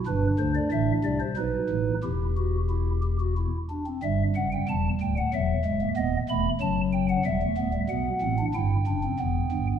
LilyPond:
<<
  \new Staff \with { instrumentName = "Pipe organ" } { \time 3/4 \key e \minor \tempo 4 = 92 << { b'8 c''16 d''16 e''8 d''16 c''16 b'4 | g'2~ g'8 r8 | e''8 fis''16 g''16 a''8 g''16 fis''16 e''4 | dis''8 b''8 a''8 g''16 fis''16 e''4 |
fis''4 g''2 | } \\ { d'2 dis'4 | e'8 fis'8 e'8 g'16 fis'16 e'8 d'16 c'16 | g2 fis8 gis16 ais16 | b8 a8 fis4 g16 a16 b16 g16 |
b8 c'16 d'16 e'8 d'16 c'16 b4 | } >> }
  \new Staff \with { instrumentName = "Pipe organ" } { \clef bass \time 3/4 \key e \minor <g,, g,>8 <d, d>8 <a,, a,>8 <c, c>8 <b,, b,>8 <a,, a,>8 | <e,, e,>2~ <e,, e,>8 r8 | <g,, g,>8 <fis,, fis,>8 <e,, e,>8 <d,, d,>8 <e,, e,>8 <cis,, cis,>8 | <dis,, dis,>8 <e,, e,>8 <fis,, fis,>4 <e,, e,>8 <d,, d,>8 |
<b,, b,>8 <a,, a,>8 <g,, g,>8 <fis,, fis,>8 <e,, e,>8 <g,, g,>8 | }
>>